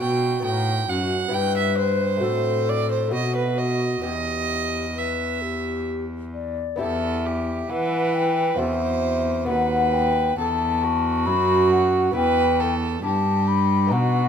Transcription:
Already playing: lute B3 D#4 F#4, flute F#4
0.01 lute B2, cello B2, violin G5
0.40 lute B3 D#4 F#4
0.44 lute A2, cello A2, violin G5
0.88 lute F#2, cello F#2, violin F#5
1.28 lute B3 E4 G4
1.32 lute G2, cello G2, flute B4, violin G5
1.57 violin E5
1.79 violin C5
2.17 lute A3 C4 F#4
2.22 lute A2, cello A2, flute A4
2.69 violin D5
2.91 violin C5
3.08 lute A3 B3 F#4
3.12 cello B2, lute B2, flute F#4, violin D#5
3.36 violin B4
3.58 violin D#5
4.02 cello E2, lute E2 B3 G4, flute G4, violin D#5
4.96 flute B4, violin E5
5.42 flute G4
6.34 flute D5
6.76 lute B3 E4 G4
6.80 lute E2, cello E2, violin A4, flute E5
7.26 violin G4
7.70 lute E3, cello E3, violin B4, flute F#5
8.14 flute G5
8.56 cello E2, lute C4 F#4 A4, violin C5, flute E5
8.60 lute E2
9.45 cello D#2, lute B3 F#4 B4, violin B4, flute F#5
9.49 lute D#2
9.93 flute G5
10.38 cello E2, lute E2, violin A4, flute A5
10.84 violin F#4
11.26 cello F#2, lute F#2, flute B5
11.71 flute F#5
12.11 cello E2, lute B3 E4 B4, violin B4
12.16 lute E2, flute G5
12.60 violin A4
13.03 lute G2, cello G2, violin G4, flute A5
13.48 flute B5
13.87 lute B3 D#4 B4
13.91 lute B2, cello B2, violin F#4, flute F#5

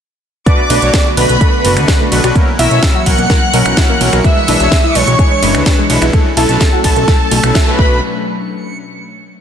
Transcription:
0.46 supersaw synth B2 A3 D4 F#4 B4, analog synth pad D3 A3 B3, synth pluck A3, analog synth lead D5, violin section D6, synth texture C#7, kick, closed hi-hat
0.70 analog synth bass B1, supersaw synth B2 A3 D4 F#4 B4, synth pluck D4, open hi-hat, ride
0.82 analog synth bass B1, supersaw synth B2 A3 D4 F#4 C#5, closed hi-hat
0.94 supersaw synth B2 A3 D4 F#4 B4, synth pluck A3, kick, snare, closed hi-hat
1.06 synth pluck F#4
1.17 analog synth bass B1, supersaw synth B2 A3 D4 F#4 B4, analog synth lead B4, violin section B5, open hi-hat, ride
1.29 analog synth bass B1, synth pluck A3, closed hi-hat
1.41 supersaw synth B2 A3 D4 F#4 B4, synth pluck A4, kick, closed hi-hat
1.65 analog synth bass F#1, supersaw synth B2 A3 D4 F#4 B4, synth pluck A3, open hi-hat, ride
1.77 analog synth bass D2, supersaw synth B2 A3 D4 F#4 B4, finger snap, closed hi-hat
1.88 supersaw synth B2 A3 D4 F#4 B4, synth pluck D4, kick, snare, closed hi-hat
2.00 synth pluck A3
2.12 analog synth bass B1, supersaw synth A3 D4 F#4 B4, open hi-hat, ride
2.24 analog synth bass B1, supersaw synth A3 D4 F#4 B4, synth pluck F#4, finger snap, closed hi-hat
2.35 supersaw synth B2 F#3 C#4 E4 A#4, analog synth pad E3 F#3 A#3, synth pluck A#3, kick, closed hi-hat
2.59 analog synth bass B1, supersaw synth B2 F#3 C#4 E4 A#4, synth pluck E4, analog synth lead E5, violin section E6, open hi-hat, ride
2.71 analog synth bass B1, supersaw synth B2 F#3 C#4 E4 C#5, closed hi-hat
2.83 supersaw synth B2 F#3 C#4 E4 A#4, synth pluck A#3, kick, snare, closed hi-hat
2.95 synth pluck F#4
3.06 analog synth bass B1, supersaw synth B2 F#3 C#4 E4 A#4, analog synth lead F#5, violin section F#6, kick, open hi-hat, ride
3.18 analog synth bass B1, synth pluck A#3, closed hi-hat
3.30 supersaw synth B2 F#3 C#4 E4 A#4, synth pluck A#4, kick, snare, closed hi-hat
3.53 analog synth bass B1, supersaw synth B2 F#3 C#4 E4 A#4, synth pluck A#3, open hi-hat, ride
3.66 analog synth bass B1, supersaw synth B2 F#3 C#4 E4 A#4, finger snap, closed hi-hat
3.77 supersaw synth B2 F#3 C#4 E4 A#4, synth pluck E4, kick, snare, closed hi-hat
3.89 synth pluck A#3
4.01 analog synth bass B1, supersaw synth F#3 C#4 E4 A#4, open hi-hat, ride
4.13 analog synth bass B1, supersaw synth F#3 C#4 E4 A#4, synth pluck F#4, finger snap, closed hi-hat
4.24 supersaw synth B2 G#3 D4 E4 B4, synth pluck G#3, analog synth pad G#3 D4, analog synth lead E5, violin section E6, kick, closed hi-hat
4.48 analog synth bass B1, supersaw synth B2 G#3 D4 E4 B4, synth pluck D4, open hi-hat, ride
4.60 analog synth bass B1, supersaw synth B2 G#3 D4 E4 C#5, closed hi-hat
4.72 supersaw synth B2 G#3 D4 E4 B4, synth pluck G#3, kick, snare, closed hi-hat
4.84 synth pluck E4
4.95 analog synth bass B1, supersaw synth B2 G#3 D4 E4 B4, analog synth lead C#5, violin section C#6, open hi-hat, ride
5.07 analog synth bass B1, synth pluck G#3, closed hi-hat
5.19 supersaw synth B2 G#3 D4 E4 B4, synth pluck G#4, kick, closed hi-hat
5.42 analog synth bass F#1, supersaw synth B2 G#3 D4 E4 B4, synth pluck G#3, open hi-hat, ride
5.55 analog synth bass D2, supersaw synth B2 G#3 D4 E4 B4, finger snap, closed hi-hat
5.66 supersaw synth B2 G#3 D4 E4 B4, synth pluck D4, kick, snare, closed hi-hat
5.78 synth pluck G#3
5.90 analog synth bass B1, supersaw synth G#3 D4 E4 B4, open hi-hat, ride
6.02 analog synth bass B1, supersaw synth G#3 D4 E4 B4, synth pluck E4, finger snap, closed hi-hat
6.13 supersaw synth B2 F#3 C#4 E4 A4, analog synth pad F#3 A3 C#4, synth pluck A3, kick, closed hi-hat
6.37 analog synth bass B1, supersaw synth B2 F#3 C#4 E4 A4, synth pluck E4, analog synth lead A4, violin section A5, open hi-hat, ride
6.49 analog synth bass B1, supersaw synth B2 F#3 C#4 E4 B4, closed hi-hat
6.61 supersaw synth B2 F#3 C#4 E4 A4, synth pluck A3, kick, snare, closed hi-hat
6.73 synth pluck F#4
6.84 analog synth bass B1, supersaw synth B2 F#3 C#4 E4 A4, analog synth lead A4, violin section A5, kick, open hi-hat, ride
6.96 analog synth bass B1, synth pluck A3, closed hi-hat
7.08 supersaw synth B2 F#3 C#4 E4 A4, synth pluck A4, kick, snare, closed hi-hat
7.31 analog synth bass B1, synth pluck A3, open hi-hat, ride
7.44 analog synth bass B1, supersaw synth B2 F#3 C#4 E4 A4, finger snap, closed hi-hat
7.55 synth pluck E4, kick, snare, closed hi-hat
7.67 supersaw synth B2 F#3 C#4 E4 B4, synth pluck A3
7.79 analog synth bass B1, analog synth pad B2 F#3 A3 D4, synth pluck A3, supersaw synth A3 D4 F#4 B4, analog synth lead B4, violin section B5, kick

